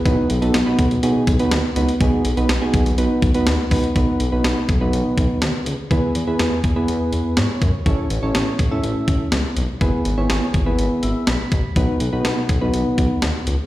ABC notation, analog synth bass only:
X:1
M:4/4
L:1/16
Q:1/4=123
K:Bmix
V:1 name="Analog synth bass" clef=bass
B,,, z B,,, B,,, B,,, z B,,, B,,, B,,, z B,,, z D,, z C,, z | B,,, z B,,, B,,, B,,, z B,,, B,,, B,,, z B,,, z D,, z C,, z | B,,, z B,,, B,,, B,,, z B,,, B,,, B,,, z B,,, z D,, z C,, z | E,, z E,, E,, E,, z E,, E,, E,, z E,, z G,, z F,, z |
A,,, z A,,, A,,, A,,, z A,,, A,,, A,,, z A,,, z C,, z B,,, z | G,,, z G,,, G,,, G,,, z G,,, G,,, G,,, z G,,, z B,,, z A,,, z | B,,, z B,,, B,,, B,,, z B,,, B,,, B,,, z B,,, z D,, z C,, z |]